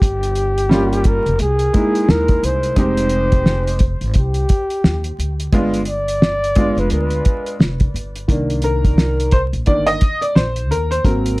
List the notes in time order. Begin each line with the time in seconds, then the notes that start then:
Already playing: G4
0.02 G1, kick, closed hi-hat
0.23 closed hi-hat
0.35 closed hi-hat
0.58 closed hi-hat
0.69 G3 A#3 C#4 F4, snare
0.93 closed hi-hat
1.04 A#4, kick, closed hi-hat
1.26 F1, closed hi-hat
1.39 C2 G#4, closed hi-hat
1.59 closed hi-hat
1.73 G#3 A#3 D#4 E4, kick, closed hi-hat
1.95 closed hi-hat
2.08 D#2 A#4, snare
2.28 kick, closed hi-hat
2.43 C2 C5, closed hi-hat
2.63 closed hi-hat
2.76 F1 G#3 C4 D#4 G4 C5, kick, closed hi-hat
2.97 closed hi-hat
3.09 closed hi-hat
3.32 kick, closed hi-hat
3.46 snare
3.67 closed hi-hat
3.79 kick, closed hi-hat
4.01 G#1, closed hi-hat
4.14 C2 G4, kick, closed hi-hat
4.34 closed hi-hat
4.49 kick, closed hi-hat
4.70 closed hi-hat
4.84 D#2, snare
5.04 closed hi-hat
5.19 D2, closed hi-hat
5.40 closed hi-hat
5.52 G1 G#3 B3 D4 F4, kick, closed hi-hat
5.74 closed hi-hat
5.85 D5, closed hi-hat
6.08 closed hi-hat
6.22 snare
6.44 closed hi-hat
6.55 G#3 B3 D4 F4, kick, closed hi-hat
6.77 F1 B4, closed hi-hat
6.90 D2 B4, closed hi-hat
7.10 closed hi-hat
7.25 kick, closed hi-hat
7.46 closed hi-hat
7.60 F1, snare
7.80 kick, closed hi-hat
7.94 G1, closed hi-hat
8.16 closed hi-hat
8.28 C2 D#3 A#3 D4, kick, closed hi-hat
8.50 closed hi-hat
8.62 A#4, closed hi-hat
8.85 kick, closed hi-hat
8.98 snare
9.20 closed hi-hat
9.31 C5, kick, closed hi-hat
9.53 A#1, closed hi-hat
9.66 G1 D#3 A#3 D4 D5, kick, closed hi-hat
9.87 D#5, closed hi-hat
10.01 kick, closed hi-hat
10.21 D5, closed hi-hat
10.35 A#1 C5, snare
10.56 closed hi-hat
10.70 D#2 A#4, closed hi-hat
10.91 C5, closed hi-hat
11.04 G#1 F#3 A#3 C4 A#4, kick, closed hi-hat
11.26 closed hi-hat